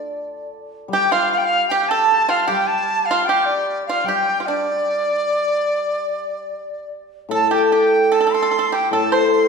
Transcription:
Already playing: D4 F4 A4 D5
0.88 G3
0.92 G4 G5
1.12 F4 F5
1.32 F5
1.38 G5
1.45 F5
1.69 G4 G5
1.89 A4 A5
2.29 F4 F5
2.48 G3 G4 G5
2.67 A5
3.05 F5
3.11 F4
3.25 G4 G5
3.45 D5
3.86 F4 F5
4.04 G3 G5
4.08 G4
4.40 F4
4.46 D4 D5
7.29 A2 A4
7.34 A5
7.51 G4 G5
7.65 A5
7.72 G4 G5
8.12 A4 A5
8.21 A4
8.27 A4
8.33 A4 C6
8.42 A4
8.51 A4
8.59 A4
8.72 G4 G5
8.91 A2 A4 A5
9.12 C5 C6

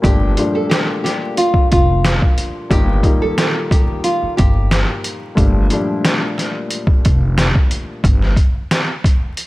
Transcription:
0.02 G1 A#2 F3 G3 A3 D4 G4, kick, closed hi-hat
0.37 A#2 F3 G3 A3 D4, closed hi-hat
0.55 A4
0.69 G4, snare, closed hi-hat
1.04 G4, snare, closed hi-hat
1.37 F4, closed hi-hat
1.54 kick
1.72 F1 F4, kick, closed hi-hat
2.05 snare, closed hi-hat
2.22 kick
2.38 closed hi-hat
2.70 G1 A#2 D#3 G3 A#3 D#4 G4, kick, closed hi-hat
3.02 A#2 D#3 G3 A#3 D#4, kick, closed hi-hat
3.22 A4
3.38 G4, snare, closed hi-hat
3.71 G4, kick, closed hi-hat
4.04 F4, closed hi-hat
4.23 muted upright bass stroke
4.37 G1 G4, kick, closed hi-hat
4.71 snare, closed hi-hat
5.04 closed hi-hat
5.35 G1 A#2 F3 G3 A3 D4, kick, closed hi-hat
5.70 A#2 F3 G3 A3 D4, closed hi-hat
6.05 snare, closed hi-hat
6.38 snare, closed hi-hat
6.71 closed hi-hat
6.87 kick
7.05 F1, kick, closed hi-hat
7.38 snare, closed hi-hat
7.55 kick
7.71 closed hi-hat
8.04 G1, kick, closed hi-hat
8.22 snare
8.36 kick, closed hi-hat
8.71 snare, closed hi-hat
9.04 kick, closed hi-hat
9.37 closed hi-hat

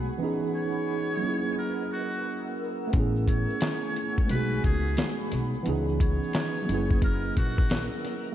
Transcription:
Already playing: G#3 B3 D#4 F#4 G#4 F#5 B5
0.18 E3 B3 C#4 B4 D#5 D#6
0.23 D#4 G#4
0.56 C#5
1.17 F#3 A#3
1.23 C#4 E4 A#4 F#5 E6
1.29 G#4
1.58 A#4
1.92 F#4
2.87 A3 B3
2.93 A1 A3 C#4 G#5 C#6, kick, closed hi-hat, shaker
2.97 E4 G#4
3.16 shaker
3.28 C#5, kick, closed hi-hat
3.50 shaker
3.61 snare, clap, closed hi-hat, shaker
3.84 shaker
3.96 closed hi-hat, shaker
4.18 kick, shaker
4.23 G#3 B3
4.29 B1 D#4 F#4 G#4 B4 F#5 B5, closed hi-hat, shaker
4.36 G#4
4.53 shaker
4.64 C#2 G#4, kick, closed hi-hat
4.87 shaker
4.97 snare, clap, closed hi-hat, shaker
5.20 shaker
5.32 B1, snare, closed hi-hat, shaker
5.54 shaker
5.63 C#2 E3 B3 C#4 B4 D#5 D#6, closed hi-hat, shaker
5.68 D#4 G#4
5.89 shaker
6.00 C#5, kick, closed hi-hat
6.23 shaker
6.33 snare, clap, closed hi-hat, shaker
6.57 shaker
6.62 F#3 A#3
6.68 F#1 C#4 E4 A#4 F#5 E6, closed hi-hat, shaker
6.74 G#4
6.91 kick, shaker
7.02 A#4, kick, closed hi-hat, shaker
7.26 shaker
7.37 A#1 F#4, kick, closed hi-hat
7.58 kick, shaker
7.70 snare, clap, closed hi-hat, shaker
7.92 shaker
8.05 snare, closed hi-hat, shaker
8.27 shaker

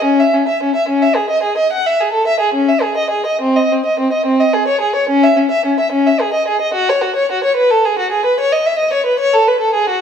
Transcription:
0.04 C#4
0.20 E5
0.34 C#4
0.48 E5
0.63 C#4
0.76 E5
0.89 C#4
1.02 E5
1.15 G#4
1.30 D#5
1.43 G#4
1.57 D#5
1.73 F#5
1.86 E5
2.00 G#4
2.13 A4
2.27 E5
2.40 G#4
2.54 C#4
2.69 E5
2.82 G#4
2.97 D#5
3.11 G#4
3.26 D#5
3.42 C4
3.56 D#5
3.72 C4
3.85 D#5
4.00 C4
4.13 D#5
4.26 C4
4.40 D#5
4.53 G#4
4.68 C#5
4.81 G#4
4.96 C#5
5.09 C#4
5.23 E5
5.36 C#4
5.51 E5
5.66 C#4
5.80 E5
5.92 C#4
6.07 E5
6.20 G#4
6.34 D#5
6.48 G#4
6.61 D#5
6.74 F#4
6.89 C#5
7.01 F#4
7.16 C#5
7.32 F#4
7.44 C#5
7.56 B4
7.71 A4
7.85 G#4
7.99 F#4
8.12 G#4
8.26 B4
8.40 C#5
8.52 D#5
8.66 E5
8.79 D#5
8.93 C#5
9.06 B4
9.20 C#5
9.34 A4
9.48 B4
9.61 A4
9.74 G#4
9.90 F#4

